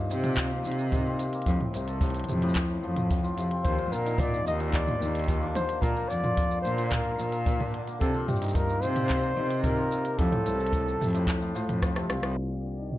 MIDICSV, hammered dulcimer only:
0, 0, Header, 1, 2, 480
1, 0, Start_track
1, 0, Tempo, 545455
1, 1289, Time_signature, 4, 2, 24, 8
1, 11425, End_track
2, 0, Start_track
2, 0, Title_t, "Hammered dulcimer"
2, 0, Program_c, 0, 15
2, 0, Note_on_c, 0, 46, 74
2, 0, Note_on_c, 0, 63, 72
2, 97, Note_on_c, 0, 48, 69
2, 133, Note_off_c, 0, 46, 0
2, 215, Note_on_c, 0, 46, 88
2, 253, Note_off_c, 0, 48, 0
2, 328, Note_off_c, 0, 46, 0
2, 338, Note_on_c, 0, 46, 78
2, 444, Note_off_c, 0, 46, 0
2, 454, Note_on_c, 0, 46, 72
2, 577, Note_on_c, 0, 51, 72
2, 613, Note_off_c, 0, 46, 0
2, 817, Note_on_c, 0, 46, 78
2, 853, Note_off_c, 0, 51, 0
2, 940, Note_on_c, 0, 60, 70
2, 1057, Note_on_c, 0, 48, 74
2, 1093, Note_off_c, 0, 46, 0
2, 1183, Note_on_c, 0, 58, 72
2, 1302, Note_on_c, 0, 45, 75
2, 1333, Note_off_c, 0, 48, 0
2, 1355, Note_off_c, 0, 58, 0
2, 1541, Note_on_c, 0, 48, 68
2, 1573, Note_off_c, 0, 45, 0
2, 1660, Note_on_c, 0, 69, 74
2, 1779, Note_on_c, 0, 45, 73
2, 1813, Note_off_c, 0, 48, 0
2, 2016, Note_on_c, 0, 48, 65
2, 2053, Note_off_c, 0, 45, 0
2, 2137, Note_on_c, 0, 45, 93
2, 2173, Note_off_c, 0, 48, 0
2, 2243, Note_off_c, 0, 45, 0
2, 2254, Note_on_c, 0, 45, 82
2, 2364, Note_off_c, 0, 45, 0
2, 2375, Note_on_c, 0, 45, 71
2, 2495, Note_on_c, 0, 53, 65
2, 2721, Note_off_c, 0, 45, 0
2, 2731, Note_on_c, 0, 45, 77
2, 2850, Note_on_c, 0, 65, 67
2, 2907, Note_off_c, 0, 63, 0
2, 2974, Note_on_c, 0, 48, 64
2, 3013, Note_off_c, 0, 45, 0
2, 3013, Note_off_c, 0, 53, 0
2, 3087, Note_off_c, 0, 60, 0
2, 3091, Note_on_c, 0, 60, 68
2, 3211, Note_on_c, 0, 46, 81
2, 3253, Note_off_c, 0, 48, 0
2, 3264, Note_off_c, 0, 69, 0
2, 3319, Note_off_c, 0, 46, 0
2, 3330, Note_on_c, 0, 46, 87
2, 3448, Note_on_c, 0, 50, 73
2, 3493, Note_off_c, 0, 46, 0
2, 3568, Note_on_c, 0, 63, 74
2, 3690, Note_on_c, 0, 46, 71
2, 3733, Note_off_c, 0, 50, 0
2, 3930, Note_on_c, 0, 50, 64
2, 3973, Note_off_c, 0, 46, 0
2, 3983, Note_off_c, 0, 63, 0
2, 4051, Note_on_c, 0, 46, 96
2, 4093, Note_off_c, 0, 50, 0
2, 4164, Note_off_c, 0, 46, 0
2, 4174, Note_on_c, 0, 46, 75
2, 4285, Note_off_c, 0, 46, 0
2, 4295, Note_on_c, 0, 46, 69
2, 4412, Note_on_c, 0, 51, 71
2, 4453, Note_off_c, 0, 46, 0
2, 4652, Note_on_c, 0, 46, 83
2, 4693, Note_off_c, 0, 51, 0
2, 4772, Note_on_c, 0, 62, 73
2, 4891, Note_on_c, 0, 50, 73
2, 4933, Note_off_c, 0, 46, 0
2, 5007, Note_on_c, 0, 58, 70
2, 5127, Note_on_c, 0, 46, 80
2, 5173, Note_off_c, 0, 50, 0
2, 5239, Note_off_c, 0, 46, 0
2, 5249, Note_on_c, 0, 46, 88
2, 5368, Note_on_c, 0, 50, 70
2, 5413, Note_off_c, 0, 46, 0
2, 5483, Note_off_c, 0, 65, 0
2, 5487, Note_on_c, 0, 65, 76
2, 5606, Note_on_c, 0, 46, 77
2, 5653, Note_off_c, 0, 50, 0
2, 5847, Note_on_c, 0, 50, 67
2, 5893, Note_off_c, 0, 46, 0
2, 5966, Note_on_c, 0, 46, 99
2, 6013, Note_off_c, 0, 50, 0
2, 6077, Note_off_c, 0, 46, 0
2, 6088, Note_on_c, 0, 46, 80
2, 6196, Note_off_c, 0, 46, 0
2, 6206, Note_on_c, 0, 46, 74
2, 6328, Note_on_c, 0, 53, 71
2, 6557, Note_off_c, 0, 46, 0
2, 6567, Note_on_c, 0, 46, 78
2, 6611, Note_off_c, 0, 60, 0
2, 6681, Note_off_c, 0, 62, 0
2, 6685, Note_on_c, 0, 62, 75
2, 6808, Note_on_c, 0, 50, 72
2, 6853, Note_off_c, 0, 46, 0
2, 6853, Note_off_c, 0, 53, 0
2, 6924, Note_off_c, 0, 58, 0
2, 6928, Note_on_c, 0, 58, 70
2, 7046, Note_on_c, 0, 46, 84
2, 7093, Note_off_c, 0, 50, 0
2, 7156, Note_off_c, 0, 46, 0
2, 7166, Note_on_c, 0, 46, 95
2, 7287, Note_on_c, 0, 48, 76
2, 7333, Note_off_c, 0, 46, 0
2, 7411, Note_on_c, 0, 63, 74
2, 7464, Note_off_c, 0, 62, 0
2, 7527, Note_on_c, 0, 46, 75
2, 7573, Note_off_c, 0, 48, 0
2, 7768, Note_on_c, 0, 48, 66
2, 7813, Note_off_c, 0, 46, 0
2, 7886, Note_on_c, 0, 46, 91
2, 7933, Note_off_c, 0, 48, 0
2, 7995, Note_off_c, 0, 46, 0
2, 8006, Note_on_c, 0, 46, 83
2, 8114, Note_off_c, 0, 46, 0
2, 8124, Note_on_c, 0, 46, 76
2, 8246, Note_on_c, 0, 51, 77
2, 8293, Note_off_c, 0, 46, 0
2, 8447, Note_off_c, 0, 65, 0
2, 8487, Note_on_c, 0, 46, 88
2, 8533, Note_off_c, 0, 51, 0
2, 8607, Note_on_c, 0, 60, 73
2, 8728, Note_on_c, 0, 48, 75
2, 8773, Note_off_c, 0, 46, 0
2, 8844, Note_off_c, 0, 58, 0
2, 8847, Note_on_c, 0, 58, 69
2, 8969, Note_on_c, 0, 45, 79
2, 9013, Note_off_c, 0, 48, 0
2, 9022, Note_off_c, 0, 58, 0
2, 9074, Note_off_c, 0, 45, 0
2, 9084, Note_on_c, 0, 45, 91
2, 9204, Note_on_c, 0, 48, 74
2, 9253, Note_off_c, 0, 45, 0
2, 9328, Note_on_c, 0, 69, 74
2, 9449, Note_on_c, 0, 45, 76
2, 9493, Note_off_c, 0, 48, 0
2, 9687, Note_on_c, 0, 48, 67
2, 9733, Note_off_c, 0, 45, 0
2, 9808, Note_on_c, 0, 45, 97
2, 9853, Note_off_c, 0, 48, 0
2, 9920, Note_off_c, 0, 45, 0
2, 9930, Note_on_c, 0, 45, 80
2, 10040, Note_off_c, 0, 45, 0
2, 10050, Note_on_c, 0, 45, 75
2, 10165, Note_on_c, 0, 53, 92
2, 10395, Note_off_c, 0, 53, 0
2, 10405, Note_on_c, 0, 53, 82
2, 10528, Note_on_c, 0, 48, 74
2, 10573, Note_off_c, 0, 45, 0
2, 10573, Note_off_c, 0, 53, 0
2, 10584, Note_off_c, 0, 63, 0
2, 10645, Note_on_c, 0, 53, 78
2, 10772, Note_on_c, 0, 45, 78
2, 10813, Note_off_c, 0, 48, 0
2, 10894, Note_on_c, 0, 46, 67
2, 10933, Note_off_c, 0, 45, 0
2, 10933, Note_off_c, 0, 53, 0
2, 10947, Note_off_c, 0, 69, 0
2, 11001, Note_off_c, 0, 46, 0
2, 11011, Note_on_c, 0, 46, 73
2, 11129, Note_on_c, 0, 50, 61
2, 11173, Note_off_c, 0, 46, 0
2, 11257, Note_on_c, 0, 63, 60
2, 11373, Note_on_c, 0, 46, 63
2, 11413, Note_off_c, 0, 50, 0
2, 11425, Note_off_c, 0, 46, 0
2, 11425, Note_off_c, 0, 60, 0
2, 11425, Note_off_c, 0, 63, 0
2, 11425, End_track
0, 0, End_of_file